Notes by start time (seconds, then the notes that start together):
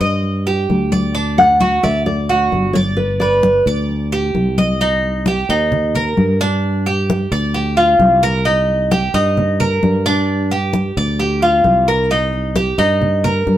Already playing: D#5
0.00 G2 D#5, high conga
0.23 high conga
0.47 G4, high conga
0.70 D2, high conga
0.92 D5, high conga
1.15 D4, high conga
1.38 F#5, high conga
1.60 F#4, high conga
1.83 D2 D5 E5, high conga
2.06 D5, high conga
2.29 F#4, high conga
2.52 G1, high conga
2.73 C#5 D5, high conga
2.97 B4, high conga
3.20 B4 D5, high conga
3.43 high conga
3.66 D2 D5, high conga
3.89 high conga
4.12 G4, high conga
4.35 C2, high conga
4.58 D#5, high conga
4.81 D#4, high conga
5.03 high conga
5.26 G4, high conga
5.49 D#2 D#4, high conga
5.72 high conga, low conga
5.95 A#4, high conga, low conga
6.17 G2, high conga
6.41 D4, high conga
6.64 high conga
6.86 G4, high conga
7.10 high conga
7.31 D2 D5
7.54 G4, high conga
7.77 F4, high conga
7.99 C2, high conga
8.23 A#4
8.45 D#4, high conga
8.69 high conga
8.91 G4, high conga
9.14 G2 D#4, high conga
9.37 high conga, low conga
9.60 A#4, high conga, low conga
9.83 G2, high conga
10.06 D4, high conga
10.28 high conga
10.50 G4, high conga
10.73 high conga
10.97 D2 D5
11.19 G4, high conga
11.42 F4, high conga
11.64 C2, high conga
11.88 A#4
12.10 D#4, high conga
12.33 high conga
12.56 G4, high conga
12.78 G2 D#4, high conga
13.02 high conga, low conga
13.24 A#4, high conga, low conga
13.47 G2, high conga